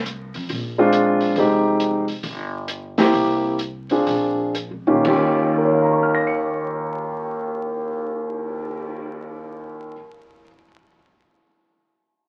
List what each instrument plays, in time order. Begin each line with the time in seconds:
Already playing: upright bass C2
0.06 closed hi-hat
0.34 upright bass F2, open hi-hat
0.49 upright bass A#1, kick, open hi-hat
0.78 grand piano G#3 C4 D4 F4
0.93 closed hi-hat
1.21 open hi-hat
1.36 upright bass F1, grand piano G#3 C4 D#4 G4, kick, open hi-hat
1.80 closed hi-hat
2.08 open hi-hat
2.23 upright bass G1, kick, open hi-hat
2.68 closed hi-hat
2.98 grand piano A#3 C4 E4 G4, snare, open hi-hat
3.13 upright bass C2, kick, open hi-hat
3.59 closed hi-hat
3.89 grand piano C4 D4 F4 G#4, open hi-hat
4.06 upright bass A#1, kick, open hi-hat
4.55 closed hi-hat
4.71 upright bass F2
4.87 upright bass A#2, grand piano D#3 A#3 C#4 F4 G4
5.05 upright bass D#2, grand piano D#2 D#3 C#4 F4 G4, kick, crash
5.38 cymbal swell
5.58 grand piano A#4
5.65 grand piano C#5
5.73 grand piano F5
5.83 grand piano A#5
5.92 grand piano C#6
6.03 grand piano F6
6.14 grand piano A#6
6.27 grand piano C#7